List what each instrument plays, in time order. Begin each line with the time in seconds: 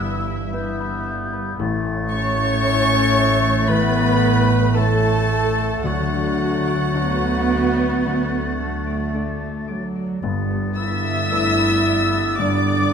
Already playing: double bass section G1, grand piano G1 G2 B3 E4 B4, cello section G2, harp G2 B3 E4 E5 B5, french horn section E3, clarinet B3, viola section E4, cor anglais E4, violin section E5, violin E5
0.01 harp B4, flute E6
0.28 harp E4
0.53 grand piano B3 E4 B4, clarinet B3, harp E5, flute G6
0.80 harp B5
1.06 harp E5
1.33 harp B4
1.59 grand piano A1 A2, double bass section A1, harp A2, cello section A2, clarinet A3, flute A6
1.84 harp A3
2.09 french horn section C#4, cor anglais C#5, viola section C#5, harp C#5, violin C#6, violin section C#6
2.37 harp A4
2.62 grand piano A3 E4 C#5, harp E5
2.90 harp C#6
3.16 harp E5
3.42 harp A4
3.67 grand piano A1 A2, harp E3, french horn section B3, cor anglais B4, viola section B4, violin B5, violin section B5
3.96 harp A3
4.22 harp C#5
4.49 harp A4
4.74 grand piano A3 E4 C#5, clarinet A3, cor anglais A4, viola section A4, harp E5, violin A5, violin section A5, flute A6
4.78 french horn section A3
5.03 harp C#6
5.30 harp E5
5.58 harp A4
5.83 grand piano D2 D3, double bass section D2, harp D3, cello section D3, french horn section F#3, clarinet A3, viola section F#4, cor anglais F#4, violin F#5, violin section F#5, flute A6
6.12 harp D4
6.40 harp A4
6.67 harp D5
6.94 grand piano A3 D4 D5, cello section B3, harp D6
7.21 harp A5
7.49 harp D6
7.76 harp D5
8.03 grand piano D2 D3, harp A3
8.31 harp D4
8.58 cello section A3, harp A4
8.86 harp D5
9.14 grand piano A3 D4 D5, harp D6
9.41 harp A5
9.68 cello section F#3, harp D6
9.95 harp D5
10.21 double bass section G1, grand piano G1 G2, harp G2, cello section G2, clarinet B3, flute A6
10.50 harp A3
10.76 french horn section E4, harp B4, cor anglais E5, viola section E5, violin E6, violin section E6
11.04 harp A4
11.31 double bass section G1, cello section G2, grand piano A3 D4 B4, harp D5
11.59 harp B5
11.86 harp D5
12.13 harp A4
12.36 grand piano G1 G2, double bass section G1, cello section G2, harp D3, french horn section D4, viola section D5, cor anglais D5, violin D6, violin section D6
12.40 violin section D6
12.67 harp A3